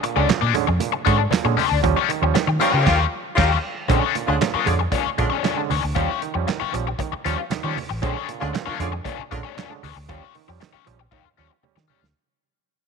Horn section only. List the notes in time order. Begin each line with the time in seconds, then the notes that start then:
2.60 F4 G4 A#4
2.85 F4 G4 A#4
3.36 F4 G4 A#4
4.27 D4 F4 G#4
4.53 D4 F4 A#4
4.66 F4 G#4 D5
5.18 D4 F4 A#4
8.40 D4 F4 G#4
8.66 D4 F4 A#4
8.80 F4 G#4 D5
9.31 D4 F4 A#4